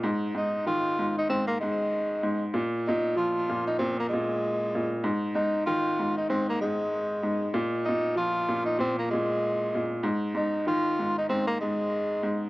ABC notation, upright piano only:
X:1
M:4/4
L:1/8
Q:"Swing 16ths" 1/4=96
K:Ab
V:1 name="Upright piano" clef=bass
A,, A,, E, A,, A,, A,,2 A,, | B,, B,, F, B,, B,, B,,2 B,, | A,, A,, E, A,, A,, A,,2 A,, | B,, B,, F, B,, B,, B,,2 B,, |
A,, A,, E, A,, A,, A,,2 A,, |]